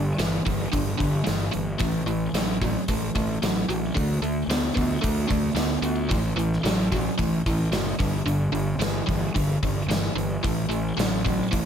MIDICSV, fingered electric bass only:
0, 0, Header, 1, 2, 480
1, 0, Start_track
1, 0, Tempo, 539568
1, 1610, Time_signature, 4, 2, 24, 8
1, 10367, End_track
2, 0, Start_track
2, 0, Title_t, "Fingered electric bass"
2, 0, Program_c, 0, 33
2, 0, Note_on_c, 0, 31, 72
2, 121, Note_off_c, 0, 31, 0
2, 169, Note_on_c, 0, 31, 79
2, 356, Note_off_c, 0, 31, 0
2, 412, Note_on_c, 0, 31, 77
2, 597, Note_off_c, 0, 31, 0
2, 646, Note_on_c, 0, 31, 81
2, 833, Note_off_c, 0, 31, 0
2, 886, Note_on_c, 0, 31, 71
2, 1073, Note_off_c, 0, 31, 0
2, 1131, Note_on_c, 0, 31, 81
2, 1316, Note_off_c, 0, 31, 0
2, 1379, Note_on_c, 0, 31, 82
2, 1561, Note_off_c, 0, 31, 0
2, 1598, Note_on_c, 0, 33, 83
2, 1787, Note_off_c, 0, 33, 0
2, 1831, Note_on_c, 0, 33, 72
2, 2023, Note_off_c, 0, 33, 0
2, 2075, Note_on_c, 0, 33, 83
2, 2449, Note_off_c, 0, 33, 0
2, 2563, Note_on_c, 0, 33, 81
2, 2749, Note_off_c, 0, 33, 0
2, 2801, Note_on_c, 0, 33, 68
2, 2988, Note_off_c, 0, 33, 0
2, 3050, Note_on_c, 0, 33, 85
2, 3233, Note_off_c, 0, 33, 0
2, 3282, Note_on_c, 0, 33, 80
2, 3468, Note_off_c, 0, 33, 0
2, 3529, Note_on_c, 0, 38, 83
2, 3712, Note_off_c, 0, 38, 0
2, 3751, Note_on_c, 0, 38, 75
2, 3940, Note_off_c, 0, 38, 0
2, 3979, Note_on_c, 0, 38, 77
2, 4173, Note_off_c, 0, 38, 0
2, 4234, Note_on_c, 0, 38, 74
2, 4422, Note_off_c, 0, 38, 0
2, 4484, Note_on_c, 0, 38, 78
2, 4668, Note_off_c, 0, 38, 0
2, 4711, Note_on_c, 0, 38, 66
2, 4900, Note_off_c, 0, 38, 0
2, 4931, Note_on_c, 0, 38, 79
2, 5128, Note_off_c, 0, 38, 0
2, 5177, Note_on_c, 0, 38, 77
2, 5433, Note_on_c, 0, 33, 81
2, 5447, Note_off_c, 0, 38, 0
2, 5621, Note_off_c, 0, 33, 0
2, 5659, Note_on_c, 0, 33, 75
2, 5852, Note_off_c, 0, 33, 0
2, 5903, Note_on_c, 0, 33, 79
2, 6280, Note_off_c, 0, 33, 0
2, 6391, Note_on_c, 0, 33, 76
2, 6580, Note_off_c, 0, 33, 0
2, 6636, Note_on_c, 0, 33, 72
2, 6823, Note_off_c, 0, 33, 0
2, 6863, Note_on_c, 0, 30, 76
2, 7055, Note_off_c, 0, 30, 0
2, 7117, Note_on_c, 0, 31, 78
2, 7304, Note_off_c, 0, 31, 0
2, 7346, Note_on_c, 0, 31, 81
2, 7537, Note_off_c, 0, 31, 0
2, 7578, Note_on_c, 0, 31, 77
2, 7773, Note_off_c, 0, 31, 0
2, 7814, Note_on_c, 0, 31, 78
2, 8010, Note_off_c, 0, 31, 0
2, 8073, Note_on_c, 0, 31, 80
2, 8263, Note_off_c, 0, 31, 0
2, 8324, Note_on_c, 0, 31, 78
2, 8509, Note_off_c, 0, 31, 0
2, 8564, Note_on_c, 0, 31, 73
2, 8750, Note_off_c, 0, 31, 0
2, 8775, Note_on_c, 0, 31, 83
2, 8973, Note_off_c, 0, 31, 0
2, 9031, Note_on_c, 0, 31, 78
2, 9223, Note_off_c, 0, 31, 0
2, 9287, Note_on_c, 0, 33, 78
2, 9473, Note_off_c, 0, 33, 0
2, 9511, Note_on_c, 0, 33, 76
2, 9704, Note_off_c, 0, 33, 0
2, 9764, Note_on_c, 0, 33, 76
2, 10139, Note_off_c, 0, 33, 0
2, 10251, Note_on_c, 0, 33, 77
2, 10367, Note_off_c, 0, 33, 0
2, 10367, End_track
0, 0, End_of_file